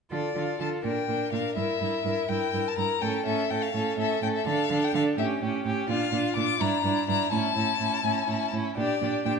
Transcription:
0.11 D3 F4 A4 D5
0.35 D3 F4 A4
0.58 D3 F4 A4 A5
0.82 A#2 D4 A#4 G5
1.08 A#2 D4 A#4
1.32 A#2 D4 A#4 F5
1.56 G2 E4 A#4 E5
1.81 G2 E4 A#4
2.04 G2 E4 A#4
2.29 G2 E4 A#4 G5
2.53 G2 E4 A#4
2.68 A5
2.77 G2 E4 A#4 A#5
3.02 A2 C#4 A4 G5
3.26 A2 C#4 A4 E5
3.50 A2 C#4 A4 G5
3.62 F5
3.74 A2 C#4 A4
3.97 A2 C#4 A4 E5
4.21 A2 C#4 A4 G5
4.36 E5
4.45 D3 D4 A4 F5
4.70 D3 D4 A4
4.84 G5
4.93 D3 D4 A4 F5
5.17 A2 C#4 G4 E5
5.42 A2 C#4 G4
5.65 A2 C#4 G4
5.88 A#2 D4 F4 F5
6.12 A#2 D4 F4
6.36 A#2 D4 F4 D6
6.60 G2 D4 E4 A#5
6.84 G2 D4 E4
7.08 G2 D4 E4 A#5
7.32 A2 C#4 E4 A5
7.56 A2 C#4 E4
7.79 A2 C#4 E4
8.03 A2 C#4 E4
8.28 A2 C#4 E4
8.53 A2 C#4 E4
8.77 A#2 D4 G4 D5
9.01 A#2 D4 G4
9.25 A#2 D4 G4 G5

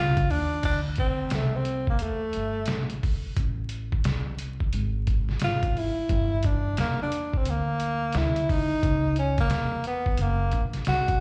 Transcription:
Already playing: C#2 F4
0.17 kick, closed hi-hat
0.30 D#2 D4, open hi-hat
0.63 D2 D4, kick, closed hi-hat, crash
0.96 C4, kick, closed hi-hat
1.30 C2 A3, snare, closed hi-hat
1.56 C4
1.65 closed hi-hat
1.87 A#3, kick
1.99 E2 A3, closed hi-hat
2.33 G1, closed hi-hat
2.66 A#1, snare, closed hi-hat
2.90 closed hi-hat
3.03 kick, open hi-hat
3.24 muted upright bass stroke
3.36 A1, kick, closed hi-hat
3.69 closed hi-hat
3.92 kick
4.04 C2, snare, closed hi-hat
4.39 closed hi-hat
4.60 kick
4.73 G#1, closed hi-hat
5.07 kick, closed hi-hat
5.29 snare
5.39 G#1, snare, closed hi-hat
5.44 F4
5.63 kick, closed hi-hat
5.77 E4, open hi-hat
5.97 muted upright bass stroke
6.09 G1, kick, closed hi-hat
6.43 D4, kick, closed hi-hat
6.77 E2 A#3, snare, closed hi-hat
7.02 D4
7.12 closed hi-hat
7.33 kick
7.38 C4
7.45 D2, closed hi-hat
7.50 A#3
7.80 closed hi-hat
8.13 D2, snare, closed hi-hat
8.17 E4
8.36 closed hi-hat
8.49 D#4, kick, open hi-hat
8.71 muted upright bass stroke
8.83 C#2, kick, closed hi-hat
9.16 C#4, closed hi-hat
9.38 A#3, kick, snare, closed hi-hat
9.50 E2, snare, closed hi-hat
9.84 B3, closed hi-hat
10.06 kick
10.17 F#1 A#3, closed hi-hat
10.52 A#1, kick, closed hi-hat
10.73 snare, closed hi-hat
10.85 C2 F#4, snare, closed hi-hat
11.08 kick, closed hi-hat

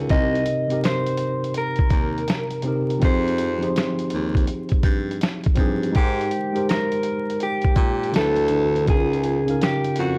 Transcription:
Already playing: C#3 C#4 D#4 F4 A#4
0.08 C2 C3 C4 D#4 G4 D#5, kick, closed hi-hat
0.13 A#4
0.35 closed hi-hat
0.46 closed hi-hat
0.68 C3 C4 D#4 G4, closed hi-hat
0.73 A#4
0.84 C5, snare, closed hi-hat
1.06 closed hi-hat
1.17 closed hi-hat
1.44 closed hi-hat
1.54 A#4, closed hi-hat
1.76 kick, closed hi-hat
1.90 D#2, kick, closed hi-hat
2.18 closed hi-hat
2.28 snare, closed hi-hat
2.51 closed hi-hat
2.62 C3 C4 D#4 G4, closed hi-hat
2.68 A#4
2.90 closed hi-hat
2.99 F3 C4 D#4 G4, kick, closed hi-hat
3.03 F2 G#4 C5
3.28 closed hi-hat
3.38 closed hi-hat
3.59 F3 C4 D#4, closed hi-hat
3.63 G4 G#4
3.76 snare, closed hi-hat
3.99 closed hi-hat
4.10 D#2, closed hi-hat
4.35 kick, closed hi-hat
4.47 closed hi-hat
4.69 kick, closed hi-hat
4.83 G2, kick, closed hi-hat
5.11 closed hi-hat
5.21 snare, closed hi-hat
5.44 kick, closed hi-hat
5.55 G2 F3 C4 D#4, kick, closed hi-hat
5.59 G4 G#4
5.83 closed hi-hat
5.92 G#3 D#4 G4 A#4, kick, closed hi-hat
5.96 G#2 G4 C5
6.21 closed hi-hat
6.31 closed hi-hat
6.53 G#3 D#4 G4 A#4, closed hi-hat
6.57 C5
6.69 A#4, snare, closed hi-hat
6.92 closed hi-hat
7.03 closed hi-hat
7.30 closed hi-hat
7.40 G4, closed hi-hat
7.62 kick, closed hi-hat
7.76 A#2, kick, closed hi-hat
8.04 closed hi-hat
8.12 D3 D4 E4 F#4, snare, closed hi-hat
8.16 D2 A4 B4
8.36 closed hi-hat
8.48 D3 D4 E4, closed hi-hat
8.53 F#4 B4
8.76 closed hi-hat
8.86 C#2 C#3 C#4 D#4 F4 G#4, kick, closed hi-hat
8.91 A#4
9.13 closed hi-hat
9.24 closed hi-hat
9.46 C#3 C#4 D#4 F5, closed hi-hat
9.51 A#4
9.62 G4, snare, closed hi-hat
9.84 closed hi-hat
9.96 F2, closed hi-hat
10.00 F#4

